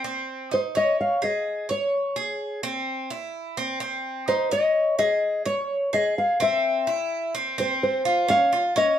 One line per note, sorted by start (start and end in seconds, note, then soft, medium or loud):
0.04 0.50 C4 medium
0.51 0.74 D#4 medium
0.51 0.60 C5 medium
0.75 1.20 C#5 medium
0.75 1.00 D#5 loud
1.01 1.23 F5 medium
1.22 1.67 G#4 medium
1.22 1.67 D#5 medium
1.69 2.15 C#5 medium
1.69 2.60 C#5 medium
2.16 2.62 G#4 medium
2.63 3.09 C4 medium
3.10 3.56 E4 medium
3.57 3.79 C4 medium
3.80 4.26 C4 medium
4.28 4.51 D#4 medium
4.28 4.52 C5 medium
4.51 4.97 C#5 medium
4.51 4.98 D#5 medium
4.99 5.44 G#4 medium
4.99 5.42 D#5 medium
5.46 5.91 C#5 medium
5.46 5.90 C#5 medium
5.93 6.39 G#4 medium
5.93 6.18 D#5 loud
6.18 6.39 F5 loud
6.40 6.86 C4 medium
6.40 7.31 E5 medium
6.87 7.33 E4 medium
7.35 7.57 C4 medium
7.58 8.04 C4 medium
7.58 7.66 C5 medium
7.83 8.26 C5 loud
8.05 8.28 F4 medium
8.28 8.51 C#4 medium
8.28 8.77 F5 loud
8.53 8.75 F4 medium
8.76 8.99 C#4 medium
8.76 8.99 D#5 medium